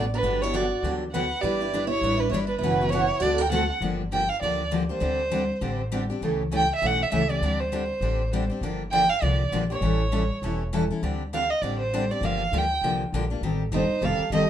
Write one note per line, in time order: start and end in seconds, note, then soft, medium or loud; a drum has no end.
0.00 0.19 A1 medium
0.14 0.43 D4 medium
0.14 0.43 B4 medium
0.23 0.71 G1 medium
0.23 0.40 D3 medium
0.23 0.40 F#3 medium
0.23 0.40 B3 medium
0.23 0.41 D4 medium
0.23 0.41 G4 medium
0.42 0.53 B3 medium
0.42 0.53 D4 medium
0.42 0.54 E4 medium
0.42 0.53 G4 medium
0.42 0.58 C#5 medium
0.54 0.64 D3 medium
0.54 0.64 F#3 medium
0.54 0.64 B3 medium
0.54 0.65 D4 medium
0.54 0.84 F#4 medium
0.54 0.64 G4 medium
0.54 0.84 D5 medium
0.83 1.31 D2 medium
0.83 1.03 D3 medium
0.83 1.03 F#3 medium
0.83 1.03 B3 medium
0.83 1.03 D4 medium
0.83 1.03 G4 medium
1.12 1.24 D3 medium
1.12 1.24 F#3 loud
1.12 1.24 B3 medium
1.12 1.24 D4 medium
1.12 1.25 G4 medium
1.12 1.41 B4 medium
1.12 1.43 F#5 medium
1.41 1.91 G1 medium
1.41 1.60 G3 medium
1.41 1.60 D4 medium
1.41 1.60 E4 medium
1.41 1.89 G4 medium
1.41 1.59 B4 medium
1.41 1.89 D5 medium
1.61 1.73 D4 soft
1.61 1.73 E4 medium
1.61 1.72 B4 medium
1.74 1.84 G3 medium
1.74 1.84 D4 medium
1.74 1.84 E4 medium
1.74 1.84 B4 medium
1.87 2.17 E4 medium
1.87 2.21 C#5 medium
2.01 2.27 A1 medium
2.01 2.22 G3 medium
2.01 2.22 D4 medium
2.01 2.23 E4 medium
2.01 2.23 B4 medium
2.17 2.31 D4 medium
2.17 2.30 B4 medium
2.30 2.57 G1 medium
2.30 2.43 G3 medium
2.30 2.35 E4 medium
2.30 2.39 C#5 medium
2.34 2.44 D4 medium
2.34 2.44 E4 loud
2.34 2.44 B4 loud
2.47 2.60 D4 medium
2.47 2.59 B4 medium
2.58 3.09 F#1 medium
2.58 2.82 F#3 medium
2.58 2.88 E4 medium
2.58 2.91 B4 medium
2.63 2.80 B2 medium
2.63 2.80 E3 medium
2.63 2.80 B3 medium
2.63 2.80 C#4 medium
2.63 2.82 E4 medium
2.63 2.80 F#4 medium
2.63 2.83 B4 medium
2.81 2.92 B3 soft
2.81 2.92 C#4 soft
2.81 2.92 F#4 medium
2.89 3.03 B2 medium
2.89 3.03 E3 medium
2.89 3.03 F#3 medium
2.89 3.03 B3 medium
2.89 3.20 E4 medium
2.89 3.24 C#5 loud
2.93 3.03 C#4 medium
2.93 3.03 E4 medium
2.93 3.03 F#4 medium
2.93 3.04 B4 medium
3.20 3.69 D2 medium
3.20 3.42 D3 medium
3.20 3.42 A3 medium
3.20 3.42 C4 medium
3.20 3.38 F#4 medium
3.20 3.42 F#4 medium
3.20 3.42 A4 medium
3.20 3.43 D5 medium
3.38 3.49 A#4 medium
3.38 3.51 G5 medium
3.50 3.62 D3 medium
3.50 3.63 A3 medium
3.50 3.63 C4 medium
3.50 3.63 F#4 loud
3.50 3.73 A4 medium
3.50 3.63 A4 loud
3.50 3.74 F#5 medium
3.81 4.29 G1 medium
3.81 4.01 D3 medium
3.81 4.01 F3 medium
3.81 4.01 A#3 medium
3.81 4.02 D4 medium
3.81 4.02 G4 medium
4.12 4.22 D3 medium
4.12 4.23 F3 medium
4.12 4.23 A#3 medium
4.12 4.23 D4 medium
4.12 4.23 G4 medium
4.12 4.31 G5 medium
4.29 4.42 F5 loud
4.42 4.90 D2 medium
4.42 4.62 D3 medium
4.42 4.62 F3 medium
4.42 4.62 A#3 medium
4.42 4.62 D4 medium
4.42 4.62 G4 medium
4.42 4.70 D5 medium
4.71 4.82 D3 medium
4.71 4.82 F3 medium
4.71 4.82 A#3 medium
4.71 4.83 D4 medium
4.71 4.83 G4 medium
4.89 5.01 A#3 soft
4.89 5.00 D4 medium
4.89 5.00 G4 medium
4.89 5.76 C5 medium
5.00 5.49 D2 medium
5.00 5.20 D3 medium
5.00 5.21 G3 medium
5.00 5.21 C4 medium
5.00 5.21 D4 medium
5.00 5.21 G4 medium
5.31 5.42 D3 medium
5.31 5.42 G3 medium
5.31 5.42 C4 medium
5.31 5.42 D4 medium
5.31 5.42 G4 medium
5.61 6.09 A1 medium
5.61 5.81 D3 medium
5.61 5.81 G3 medium
5.61 5.81 C4 medium
5.61 5.81 D4 medium
5.61 5.81 G4 medium
5.92 6.02 D3 medium
5.92 6.02 G3 medium
5.92 6.03 C4 medium
5.92 6.03 D4 medium
5.92 6.03 G4 medium
6.10 6.22 C4 soft
6.10 6.22 D4 soft
6.10 6.21 G4 medium
6.21 6.69 C#2 medium
6.21 6.41 C#3 medium
6.21 6.42 E3 medium
6.21 6.42 G3 medium
6.21 6.42 A3 medium
6.21 6.42 C#4 medium
6.21 6.42 E4 medium
6.21 6.42 G4 medium
6.21 6.42 A4 medium
6.21 6.42 C#5 medium
6.52 6.62 C#3 medium
6.52 6.62 E3 medium
6.52 6.62 G3 medium
6.52 6.63 A3 medium
6.52 6.63 C#4 medium
6.52 6.63 E4 medium
6.52 6.63 G4 medium
6.52 6.63 A4 medium
6.52 6.63 C#5 medium
6.56 6.71 G5 loud
6.75 6.88 E5 medium
6.82 7.07 B1 medium
6.82 7.01 C#3 medium
6.82 7.01 E3 medium
6.82 7.01 G3 medium
6.82 7.01 A3 medium
6.82 7.02 C#4 medium
6.82 7.02 E4 medium
6.82 7.02 G4 medium
6.82 7.02 A4 medium
6.82 7.02 C#5 medium
6.86 7.04 F#5 medium
7.03 7.12 E5 medium
7.12 7.37 C#2 medium
7.12 7.22 C#3 medium
7.12 7.22 E3 medium
7.12 7.23 G3 medium
7.12 7.22 A3 medium
7.12 7.23 C#4 medium
7.12 7.23 E4 medium
7.12 7.23 G4 medium
7.12 7.23 A4 medium
7.12 7.24 C#5 medium
7.12 7.32 E5 medium
7.29 7.42 A3 soft
7.29 7.41 C#4 soft
7.29 7.41 G4 medium
7.29 7.61 D5 medium
7.41 7.89 D2 medium
7.41 7.61 D3 medium
7.41 7.62 G3 medium
7.41 7.62 C4 medium
7.41 7.62 D4 medium
7.41 7.62 G4 medium
7.60 8.50 C5 medium
7.72 7.83 D3 medium
7.72 7.82 G3 medium
7.72 7.83 C4 medium
7.72 7.83 D4 medium
7.72 7.83 G4 medium
8.01 8.49 A1 medium
8.01 8.21 D3 medium
8.01 8.21 G3 medium
8.01 8.21 C4 medium
8.01 8.21 D4 medium
8.01 8.22 G4 medium
8.33 8.43 D3 medium
8.33 8.43 G3 medium
8.33 8.43 C4 medium
8.33 8.43 D4 medium
8.33 8.43 G4 medium
8.50 8.62 C4 soft
8.50 8.62 D4 medium
8.50 8.61 G4 medium
8.61 9.09 G1 medium
8.61 8.82 D3 medium
8.61 8.82 F3 medium
8.61 8.82 A#3 medium
8.61 8.82 D4 medium
8.61 8.82 G4 medium
8.92 9.03 D3 medium
8.92 9.03 F3 medium
8.92 9.03 A#3 medium
8.92 9.03 D4 medium
8.92 9.03 G4 medium
8.92 9.11 G5 loud
9.10 9.24 F5 medium
9.21 9.47 C2 medium
9.21 9.41 D3 medium
9.21 9.41 F3 medium
9.21 9.41 A#3 medium
9.21 9.42 D4 medium
9.21 9.41 G4 medium
9.21 9.52 D5 medium
9.52 9.77 A#1 medium
9.52 9.63 D3 medium
9.52 9.63 F3 medium
9.52 9.63 A#3 medium
9.52 9.63 D4 medium
9.52 9.63 G4 medium
9.70 9.82 A#3 soft
9.70 9.82 D4 soft
9.70 9.81 G4 medium
9.70 10.57 C#5 medium
9.81 10.29 A1 medium
9.81 10.01 E3 medium
9.81 10.01 G3 medium
9.81 10.01 C#4 medium
9.81 10.02 E4 medium
9.81 10.02 A4 medium
10.12 10.22 E3 medium
10.12 10.23 G3 medium
10.12 10.23 C#4 medium
10.12 10.23 E4 medium
10.12 10.23 A4 medium
10.42 10.90 E1 medium
10.42 10.62 E3 medium
10.42 10.62 G3 medium
10.42 10.62 C#4 medium
10.42 10.62 E4 medium
10.42 10.62 A4 medium
10.73 10.83 E3 medium
10.73 10.83 G3 medium
10.73 10.83 C#4 medium
10.73 10.83 E4 medium
10.73 10.83 A4 loud
10.90 11.03 C#4 soft
10.90 11.02 E4 medium
10.90 11.02 A4 medium
11.03 11.50 D2 medium
11.03 11.22 D3 medium
11.03 11.22 G3 medium
11.03 11.22 C4 medium
11.03 11.22 D4 medium
11.03 11.22 G4 medium
11.33 11.43 D3 medium
11.33 11.43 G3 medium
11.33 11.43 C4 medium
11.33 11.44 D4 medium
11.33 11.44 G4 medium
11.33 11.52 F5 medium
11.50 11.63 D#5 medium
11.62 12.10 A1 medium
11.62 11.82 D3 medium
11.62 11.82 G3 medium
11.62 11.82 C4 medium
11.62 11.82 D4 medium
11.62 11.82 G4 medium
11.62 11.79 D5 medium
11.80 12.13 C5 medium
11.94 12.03 D3 medium
11.94 12.03 G3 medium
11.94 12.04 C4 medium
11.94 12.04 D4 medium
11.94 12.04 G4 medium
12.11 12.23 C4 soft
12.11 12.22 D4 medium
12.11 12.22 G4 medium
12.11 12.26 D5 medium
12.21 12.45 G1 medium
12.21 12.42 D3 medium
12.21 12.42 F3 medium
12.21 12.42 A#3 medium
12.21 12.42 D4 medium
12.21 12.42 G4 medium
12.21 12.59 F5 medium
12.52 12.77 D2 medium
12.52 12.63 D3 medium
12.52 12.63 F3 medium
12.52 12.63 A#3 medium
12.52 12.64 D4 medium
12.52 12.64 G4 medium
12.57 12.85 G5 medium
12.81 13.07 C2 medium
12.81 13.02 D3 medium
12.81 13.02 F3 medium
12.81 13.02 A#3 medium
12.81 13.03 D4 medium
12.81 13.03 G4 medium
13.12 13.38 A#1 medium
13.12 13.24 D3 medium
13.12 13.24 F3 medium
13.12 13.24 A#3 medium
13.12 13.24 D4 medium
13.12 13.24 G4 loud
13.30 13.43 A#3 soft
13.30 13.42 D4 medium
13.30 13.42 G4 medium
13.41 13.71 A1 medium
13.41 13.62 D#3 medium
13.41 13.62 G3 medium
13.41 13.62 C4 medium
13.41 13.62 G4 medium
13.41 13.62 A4 medium
13.72 13.88 G1 medium
13.72 13.83 D#3 medium
13.72 13.83 G3 medium
13.72 13.83 C4 medium
13.72 14.01 D#4 medium
13.72 13.83 G4 medium
13.72 13.83 A4 medium
13.72 14.06 C5 medium
13.90 muted upright bass stroke soft
14.02 14.18 F1 medium
14.02 14.22 D#3 medium
14.02 14.22 G3 medium
14.02 14.22 C4 medium
14.02 14.22 G4 medium
14.02 14.22 A4 medium
14.02 14.32 A4 medium
14.02 14.33 F5 medium
14.19 muted upright bass stroke soft
14.30 14.50 G1 medium
14.30 14.43 D#3 medium
14.30 14.43 G3 medium
14.30 14.43 C4 medium
14.30 14.50 G4 medium
14.30 14.43 G4 medium
14.30 14.43 A4 loud
14.35 14.50 D#5 medium